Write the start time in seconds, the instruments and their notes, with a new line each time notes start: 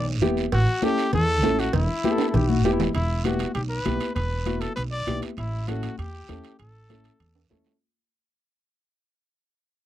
Already playing: upright bass B1
0.21 upright bass E1, upright piano B3 E4 G4, high conga, low conga, short guiro
0.37 short guiro
0.52 upright bass A1, trumpet F#4, cowbell, long guiro
0.82 upright piano C#4 E4 A4, trumpet G4, high conga, short guiro
0.98 short guiro
1.13 upright bass E2, trumpet A4, cowbell, low conga, long guiro
1.43 upright bass A1, upright piano C#4 E4 A4, high conga, low timbale, short guiro
1.59 trumpet F#4, short guiro
1.73 upright bass E1, trumpet E4, cowbell, low conga, long guiro
2.04 upright piano B3 E4 G4, trombone G4, high conga, short guiro
2.12 trombone A4
2.18 high timbale, short guiro
2.30 upright bass B1, trombone G4 A4, cowbell
2.35 low conga, long guiro
2.50 trombone F#4, high conga
2.64 upright bass E1, upright piano B3 E4 G4, trombone G4, low timbale, short guiro
2.73 trombone E4
2.80 low conga, low timbale, short guiro
2.94 upright bass E1, trumpet E4, high timbale, long guiro
3.25 upright piano B3 E4 G4, trumpet F#4, high conga, high timbale, short guiro
3.39 high conga, high timbale, short guiro
3.55 upright bass B1, trumpet G4, high timbale, long guiro
3.69 trumpet B4
3.85 upright bass B1, upright piano B3 E4 G4, high conga, high timbale, short guiro
4.00 high timbale, short guiro
4.15 upright bass E1, trumpet B4, high timbale, long guiro
4.46 upright piano B3 E4 F#4, high conga, high timbale, short guiro
4.61 trumpet A4, high timbale, short guiro
4.76 upright bass B1, trumpet B4, high timbale, long guiro
4.91 trumpet D5
5.06 upright bass B1, upright piano B3 E4 G4, high conga, high timbale, short guiro
5.22 high timbale, short guiro
5.37 upright bass A1, trumpet E4, high timbale, long guiro
5.67 upright piano C#4 E4 A4, trumpet F#4, high conga, high timbale, short guiro
5.83 high conga, high timbale, short guiro
5.98 upright bass E2, trumpet G4, high timbale, long guiro
6.28 upright bass E2, upright piano C#4 E4 A4, high conga, high timbale, short guiro
6.44 high timbale, short guiro
6.59 upright bass A1, trumpet A4, high timbale, long guiro
6.89 upright piano C#4 E4 A4, high conga, high timbale, short guiro
7.04 high timbale, short guiro
7.20 upright bass E2, high timbale, long guiro
7.35 high timbale
7.49 upright bass E2, upright piano C#4 E4 A4, high conga, low timbale, short guiro
7.65 low timbale, short guiro